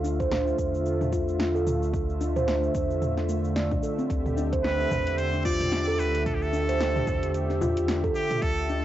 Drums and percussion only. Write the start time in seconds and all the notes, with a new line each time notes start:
0.05 cabasa
0.20 kick, cabasa
0.32 snare, mid tom, cabasa
0.47 cabasa
0.59 kick, cabasa
0.75 cabasa
0.86 cabasa
1.01 mid tom, cabasa
1.13 kick, cabasa
1.29 cabasa
1.40 snare, cabasa
1.56 cabasa
1.67 mid tom, cabasa
1.83 cabasa
1.94 kick, cabasa
2.10 cabasa
2.21 cabasa
2.36 mid tom, cabasa
2.48 snare, cabasa
2.63 cabasa
2.75 kick, cabasa
2.91 cabasa
3.02 mid tom, cabasa
3.17 snare, cabasa
3.29 cabasa
3.45 cabasa
3.56 snare, cabasa
3.71 kick, mid tom, cabasa
3.83 cabasa
3.99 cabasa
4.10 kick, closed hi-hat, cabasa
4.26 mid tom, cabasa
4.37 cabasa
4.53 kick, closed hi-hat, cabasa
4.64 snare, closed hi-hat, cabasa
4.80 cabasa
4.91 kick, mid tom, frame drum, cabasa
5.07 closed hi-hat, cabasa
5.18 closed hi-hat, cabasa
5.34 cabasa
5.45 kick, cabasa
5.61 closed hi-hat, mid tom, cabasa
5.72 snare, closed hi-hat, cabasa
5.88 cabasa
5.99 cabasa
6.15 closed hi-hat, cabasa
6.26 kick, closed hi-hat, mid tom, cabasa
6.42 cabasa
6.53 cabasa
6.69 closed hi-hat, cabasa
6.81 snare, closed hi-hat, cabasa
6.96 mid tom, cabasa
7.07 kick, frame drum, cabasa
7.23 closed hi-hat, cabasa
7.34 closed hi-hat, cabasa
7.50 snare, cabasa
7.61 mid tom, frame drum, cabasa
7.77 closed hi-hat, cabasa
7.88 snare, closed hi-hat, cabasa
8.04 kick, cabasa
8.15 cabasa
8.31 closed hi-hat, mid tom, cabasa
8.42 kick, closed hi-hat, cabasa
8.58 cabasa
8.70 cabasa